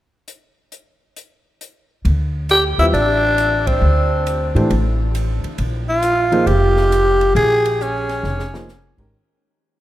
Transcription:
0.28 closed hi-hat soft
0.72 closed hi-hat soft
1.16 closed hi-hat soft
1.61 closed hi-hat soft
2.05 2.75 D2 medium
2.05 ride soft
2.49 2.64 G4 medium
2.49 hi-hat pedal soft
2.49 ride medium
2.78 2.92 D#2 medium
2.78 2.92 G3 medium
2.78 2.92 C4 soft
2.78 2.86 E4 medium
2.78 2.92 F4 soft
2.78 2.93 B4 medium
2.78 2.93 E5 medium
2.78 ride soft
2.93 3.78 A1 medium
2.93 3.68 D4 medium
2.93 ride soft
3.38 hi-hat pedal soft
3.38 ride medium
3.67 4.55 C4 medium
3.67 kick medium
3.67 ride medium
3.81 4.51 D2 medium
4.27 hi-hat pedal soft
4.27 ride medium
4.55 4.69 A2 medium
4.55 4.69 E3 medium
4.55 4.69 A3 medium
4.55 4.69 D4 medium
4.55 4.69 G4 medium
4.55 4.69 C5 medium
4.55 ride soft
4.70 5.40 A1 medium
4.70 ride medium
5.15 hi-hat pedal medium
5.15 ride medium
5.44 muted upright bass stroke soft
5.44 ride soft
5.58 6.43 A#1 medium
5.58 ride medium
5.89 6.48 F4 medium
6.02 hi-hat pedal medium
6.02 ride medium
6.32 6.45 F3 medium
6.32 6.46 A#3 medium
6.32 6.46 D#4 medium
6.32 6.46 G#4 medium
6.32 6.46 C5 medium
6.32 ride soft
6.46 7.31 F1 medium
6.46 7.35 G4 medium
6.46 ride medium
6.77 snare soft
6.92 hi-hat pedal soft
6.92 ride medium
7.21 ride soft
7.35 8.20 A#1 medium
7.35 7.84 G#4 medium
7.35 ride medium
7.65 ride medium
7.80 8.69 C#4 medium
7.80 hi-hat pedal medium
8.09 snare soft
8.09 ride soft
8.23 8.93 F1 medium
8.23 snare soft
8.39 snare soft
8.53 8.67 F3 medium
8.53 8.67 A#3 medium
8.53 8.67 D#4 medium
8.53 8.67 G#4 medium
8.53 8.67 C5 medium
8.53 snare medium
8.69 snare soft
8.69 hi-hat pedal soft
8.98 9.12 G#1 medium
8.98 9.12 D#3 medium
8.98 9.12 G#3 medium
8.98 9.12 C#4 medium
8.98 9.12 G4 medium
8.98 9.12 A#4 medium
8.98 kick medium
8.98 crash medium

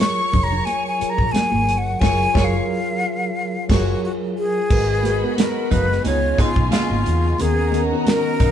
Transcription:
0.00 0.99 F#3 medium
0.00 1.00 F4 medium
0.00 1.01 G#4 medium
0.00 1.02 A#4 loud
0.00 1.97 C#5 loud
0.00 1.97 C#6 loud
0.00 0.45 C#6 loud
0.00 snare loud
0.00 closed hi-hat medium
0.00 high conga medium
0.33 0.59 F1 medium
0.33 kick medium
0.33 open hi-hat medium
0.33 low conga medium
0.43 0.67 A#5 loud
0.52 low conga medium
0.65 0.86 G#5 loud
0.65 closed hi-hat medium
0.65 muted conga soft
0.87 1.11 G#5 medium
0.99 1.73 F#3 medium
0.99 1.74 F4 medium
0.99 1.74 G#4 medium
0.99 1.74 A#4 medium
0.99 muted fingered electric bass stroke soft
0.99 closed hi-hat medium
1.10 1.33 A#5 medium
1.18 1.31 A#1 medium
1.18 kick medium
1.32 1.79 G#5 medium
1.32 snare loud
1.32 closed hi-hat medium
1.32 high conga medium
1.52 1.69 G#1 medium
1.52 high conga medium
1.69 1.94 G1 loud
1.69 closed hi-hat medium
1.78 2.01 F#5 medium
2.00 2.25 F#1 medium
2.00 2.24 F#3 loud
2.00 2.25 F4 loud
2.00 2.25 G#4 loud
2.00 2.25 A#4 loud
2.00 2.25 C#5 loud
2.00 2.46 G#5 loud
2.00 2.24 C#6 medium
2.00 kick loud
2.00 snare medium
2.00 crash medium
2.33 2.59 F#1 medium
2.33 2.57 F#3 loud
2.33 2.58 F4 loud
2.33 2.58 G#4 loud
2.33 2.59 A#4 loud
2.33 2.58 C#5 loud
2.33 2.58 C#6 loud
2.33 kick loud
2.33 snare loud
2.44 3.68 F5 medium
3.68 3.93 F#1 loud
3.68 3.92 F#3 medium
3.68 3.93 F4 medium
3.68 4.01 F#4 medium
3.68 3.93 G#4 loud
3.68 3.94 A#4 medium
3.68 3.94 C#5 medium
3.68 3.94 C#6 medium
3.68 kick loud
3.68 snare loud
3.68 crash medium
4.04 4.12 F#4 medium
4.38 5.34 G#4 loud
4.70 5.22 G#1 medium
4.70 8.52 D#3 medium
4.70 6.04 F#3 medium
4.70 4.95 G#3 medium
4.70 7.37 G#3 medium
4.70 6.04 B3 medium
4.70 6.04 F#4 medium
4.70 4.96 F#4 medium
4.70 6.03 F#4 medium
4.70 4.96 A#4 medium
4.70 4.97 B4 medium
4.70 6.03 D#5 medium
4.70 6.03 B5 medium
4.70 kick loud
4.70 crash medium
4.70 muted conga soft
5.03 5.17 G#3 medium
5.03 5.17 F#4 medium
5.03 5.18 A#4 medium
5.03 5.18 B4 medium
5.03 closed hi-hat medium
5.03 muted conga medium
5.21 6.04 G#3 medium
5.21 6.04 B3 medium
5.21 6.05 F#4 medium
5.21 6.05 G#4 medium
5.38 5.74 A#4 medium
5.38 snare loud
5.38 closed hi-hat loud
5.38 high conga medium
5.71 5.97 F#1 medium
5.71 5.87 B2 medium
5.71 5.87 A#3 medium
5.71 5.87 D#4 medium
5.71 6.05 B4 medium
5.71 kick medium
5.71 closed hi-hat medium
5.71 low conga medium
5.92 snare soft
6.04 6.31 C#2 loud
6.04 6.20 B2 medium
6.04 7.12 C#3 medium
6.04 6.20 G#3 medium
6.04 7.13 B3 medium
6.04 7.38 B3 medium
6.04 7.38 C#4 medium
6.04 6.20 D#4 medium
6.04 7.13 D#4 medium
6.04 7.36 F4 medium
6.04 7.38 F4 medium
6.04 7.14 F4 medium
6.04 6.42 C#5 medium
6.04 7.37 D#5 medium
6.04 7.36 G#5 medium
6.04 closed hi-hat medium
6.04 muted conga soft
6.38 6.50 B2 medium
6.38 6.50 G#3 medium
6.38 6.50 D#4 medium
6.38 6.71 F4 medium
6.38 muted fingered electric bass stroke soft
6.38 kick loud
6.38 closed hi-hat medium
6.38 muted conga soft
6.56 6.68 B1 medium
6.56 kick medium
6.71 7.36 B2 medium
6.71 7.36 G#3 medium
6.71 7.43 F4 medium
6.71 7.36 F4 medium
6.71 snare loud
6.71 closed hi-hat medium
6.71 high conga medium
6.90 7.02 G#1 medium
6.90 high conga medium
7.06 7.32 E2 loud
7.06 closed hi-hat medium
7.38 7.92 D#2 medium
7.38 7.64 D#3 medium
7.38 8.52 F#3 medium
7.38 8.52 B3 medium
7.38 7.64 B3 medium
7.38 7.65 C#4 medium
7.38 8.52 F#4 medium
7.38 7.81 G#4 loud
7.38 8.52 A#4 medium
7.38 7.65 A#4 medium
7.38 8.52 D#5 medium
7.38 8.52 A#5 loud
7.38 closed hi-hat medium
7.38 muted conga soft
7.72 7.85 D#3 medium
7.72 7.86 B3 medium
7.72 7.86 C#4 medium
7.72 7.87 A#4 medium
7.72 closed hi-hat medium
7.72 muted conga medium
7.90 8.52 D#3 medium
7.90 8.52 B3 medium
7.90 8.52 C#4 medium
7.90 8.52 F#4 medium
8.07 8.52 A#4 loud
8.07 snare loud
8.07 closed hi-hat medium
8.07 high conga medium
8.40 8.52 B1 medium
8.40 8.52 B2 medium
8.40 8.52 A#3 medium
8.40 8.52 D#4 medium
8.40 kick loud
8.40 closed hi-hat medium

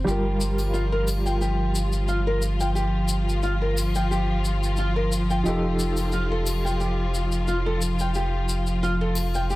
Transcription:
0.04 5.43 G1 medium
0.04 9.56 F3 medium
0.04 5.41 G3 medium
0.04 9.56 F4 medium
0.04 5.42 F4 medium
0.04 0.73 G4 medium
0.04 shaker soft
0.10 5.44 A#4 medium
0.41 shaker medium
0.58 triangle soft
0.58 shaker soft
0.74 0.84 F4 medium
0.74 shaker soft
0.92 1.07 A#4 medium
1.08 triangle medium
1.08 shaker medium
1.26 1.35 G5 medium
1.26 shaker soft
1.41 2.07 G4 medium
1.41 shaker soft
1.75 shaker medium
1.92 shaker soft
2.08 2.19 F4 medium
2.08 shaker soft
2.27 2.42 A#4 medium
2.42 shaker medium
2.60 2.69 G5 medium
2.60 shaker soft
2.75 3.42 G4 medium
2.75 shaker soft
3.08 shaker medium
3.29 shaker soft
3.43 3.54 F4 medium
3.43 shaker soft
3.62 3.76 A#4 medium
3.77 triangle medium
3.77 shaker medium
3.95 4.04 G5 medium
3.95 shaker soft
4.11 4.77 G4 medium
4.11 shaker soft
4.45 shaker medium
4.63 shaker soft
4.77 4.89 F4 medium
4.77 shaker soft
4.96 5.11 A#4 medium
5.12 shaker medium
5.30 5.39 G5 medium
5.30 shaker soft
5.44 9.56 F1 medium
5.44 9.56 F3 medium
5.44 9.56 D#4 medium
5.44 6.12 G4 medium
5.44 9.56 G4 medium
5.44 shaker soft
5.49 9.56 A4 medium
5.79 shaker medium
5.97 triangle soft
5.97 shaker soft
6.12 6.24 F4 medium
6.12 shaker soft
6.32 6.46 A4 medium
6.46 triangle medium
6.46 shaker medium
6.65 6.74 G5 medium
6.65 shaker soft
6.80 7.46 G4 medium
6.80 shaker soft
7.14 shaker medium
7.32 shaker soft
7.48 7.58 F4 medium
7.48 shaker soft
7.66 7.81 A4 medium
7.81 shaker medium
7.99 8.09 G5 medium
7.99 shaker soft
8.14 8.81 G4 medium
8.14 shaker soft
8.49 shaker medium
8.67 shaker soft
8.83 8.93 F4 medium
8.83 shaker soft
9.01 9.16 A4 medium
9.15 triangle medium
9.15 shaker medium
9.34 9.44 G5 medium
9.34 shaker soft
9.50 9.56 G4 medium
9.50 shaker soft

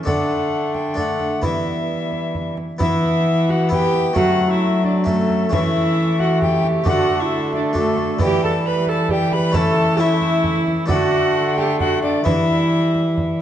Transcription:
0.03 1.41 D3 medium
0.03 0.93 A3 soft
0.03 0.94 A3 medium
0.03 0.94 D4 medium
0.03 0.95 A4 medium
0.03 0.76 F#5 medium
0.03 frame drum medium
0.08 1.40 D3 medium
0.08 0.97 D4 medium
0.74 0.98 G5 medium
0.74 frame drum soft
0.94 1.41 A3 soft
0.94 1.41 D4 soft
0.94 1.46 D4 medium
0.94 1.42 A4 soft
0.94 frame drum soft
0.98 1.43 A3 medium
0.98 1.43 F#5 medium
1.20 frame drum soft
1.42 2.59 E3 medium
1.42 2.57 E3 soft
1.42 2.57 G3 medium
1.42 2.76 B3 soft
1.42 2.61 B3 medium
1.42 2.77 E4 soft
1.42 2.56 E5 medium
1.42 frame drum medium
2.12 frame drum soft
2.35 frame drum soft
2.57 frame drum soft
2.78 4.12 E3 medium
2.78 3.67 B3 medium
2.78 3.68 B3 medium
2.78 3.68 E4 medium
2.78 3.51 E4 loud
2.78 3.52 E5 loud
2.78 frame drum medium
3.49 3.70 F#4 medium
3.49 3.72 F#5 loud
3.49 frame drum soft
3.69 4.14 B3 medium
3.69 4.16 B3 medium
3.69 4.14 E4 medium
3.69 4.14 G4 loud
3.69 4.18 G5 loud
3.69 frame drum medium
3.94 frame drum soft
4.13 5.47 F#3 medium
4.13 5.49 F#3 medium
4.13 5.02 A3 medium
4.13 5.04 A3 medium
4.13 5.03 C#4 medium
4.13 4.48 F#4 loud
4.13 4.52 F#5 loud
4.13 frame drum medium
4.49 4.82 E4 medium
4.49 4.86 E5 loud
4.84 4.92 D4 medium
4.84 5.07 D5 loud
4.84 frame drum soft
5.04 5.48 A3 medium
5.04 5.51 A3 medium
5.04 5.49 C#4 medium
5.04 5.51 A4 medium
5.04 frame drum medium
5.30 frame drum soft
5.49 6.84 E3 medium
5.49 6.83 E3 medium
5.49 6.81 A3 medium
5.49 6.84 A3 medium
5.49 6.82 C#4 medium
5.49 6.18 E4 loud
5.49 6.22 E5 loud
5.49 frame drum medium
6.19 6.43 F#4 medium
6.19 6.42 F#5 loud
6.19 frame drum soft
6.42 6.89 G4 loud
6.42 6.67 G5 loud
6.42 frame drum medium
6.63 frame drum medium
6.84 8.18 D3 medium
6.84 8.17 D3 medium
6.84 7.72 A3 medium
6.84 7.75 A3 medium
6.84 7.73 D4 medium
6.84 7.73 F#4 medium
6.84 7.23 F#4 loud
6.84 7.22 F#5 loud
6.84 frame drum medium
7.20 7.54 E4 loud
7.20 7.54 E5 loud
7.53 7.76 D4 medium
7.53 7.60 D5 loud
7.53 frame drum soft
7.73 8.18 A3 medium
7.73 8.23 A3 medium
7.73 8.19 D4 medium
7.73 8.19 F#4 medium
7.73 frame drum medium
7.77 8.21 A3 medium
7.77 8.24 A4 loud
7.97 frame drum medium
8.19 10.90 E3 medium
8.19 10.86 E3 medium
8.19 9.10 G3 medium
8.19 9.50 B3 medium
8.19 9.51 E4 medium
8.19 8.44 G4 loud
8.19 8.45 G5 loud
8.19 frame drum medium
8.44 8.53 A4 loud
8.44 8.68 A5 loud
8.66 8.90 B4 loud
8.66 8.88 B5 loud
8.86 9.12 A4 loud
8.86 9.11 A5 loud
8.86 frame drum soft
9.09 9.57 G3 medium
9.09 9.35 G4 loud
9.09 9.34 G5 loud
9.09 frame drum medium
9.32 9.58 B4 loud
9.32 9.56 B5 loud
9.32 frame drum medium
9.52 9.96 A3 medium
9.52 9.87 A3 medium
9.52 9.97 C#4 medium
9.52 9.98 E4 medium
9.52 10.01 A5 loud
9.52 frame drum medium
9.56 10.00 A4 loud
9.97 10.85 A3 medium
9.97 10.61 A3 medium
9.97 10.86 C#4 medium
9.97 10.88 E4 loud
9.97 10.87 E4 medium
9.97 10.62 E5 loud
10.21 frame drum soft
10.44 frame drum medium
10.67 frame drum medium
10.86 12.25 D3 medium
10.86 12.22 D3 medium
10.86 12.20 A3 medium
10.86 12.21 D4 medium
10.86 11.56 F#4 loud
10.86 12.21 A4 medium
10.86 11.59 F#5 loud
10.86 frame drum medium
10.90 11.77 A3 medium
11.58 11.80 G4 loud
11.58 11.79 G5 loud
11.58 frame drum soft
11.80 12.27 A3 medium
11.80 12.03 F#4 loud
11.80 12.02 F#5 loud
11.80 frame drum medium
12.03 12.26 D4 medium
12.03 12.26 D5 loud
12.03 frame drum soft
12.24 13.41 E3 medium
12.24 13.40 E3 medium
12.24 13.41 G3 medium
12.24 13.42 B3 medium
12.24 13.42 E4 medium
12.24 13.39 E4 loud
12.24 13.40 E5 loud
12.24 frame drum medium
12.95 frame drum soft
13.18 frame drum medium

